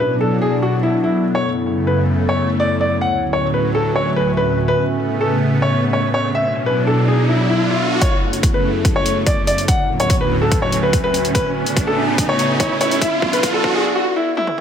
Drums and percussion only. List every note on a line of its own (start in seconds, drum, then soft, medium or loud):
8.02 kick medium
8.02 closed hi-hat medium
8.33 closed hi-hat medium
8.43 kick medium
8.43 closed hi-hat medium
8.85 kick medium
8.85 closed hi-hat medium
9.06 closed hi-hat medium
9.27 kick loud
9.27 closed hi-hat medium
9.47 closed hi-hat medium
9.58 closed hi-hat medium
9.68 kick medium
9.68 closed hi-hat medium
10.00 closed hi-hat medium
10.10 kick medium
10.10 closed hi-hat medium
10.52 kick loud
10.52 closed hi-hat medium
10.72 closed hi-hat medium
10.93 kick medium
10.93 closed hi-hat medium
11.14 closed hi-hat medium
11.25 closed hi-hat medium
11.35 kick loud
11.35 closed hi-hat medium
11.66 closed hi-hat medium
11.77 kick loud
11.77 closed hi-hat medium
12.18 kick loud
12.18 closed hi-hat medium
12.39 closed hi-hat medium
12.60 kick loud
12.60 closed hi-hat medium
12.81 closed hi-hat medium
12.91 closed hi-hat medium
13.01 kick loud
13.01 closed hi-hat medium
13.22 kick loud
13.33 closed hi-hat medium
13.43 kick loud
13.43 closed hi-hat medium
13.64 kick loud
14.37 high tom medium
14.47 mid tom medium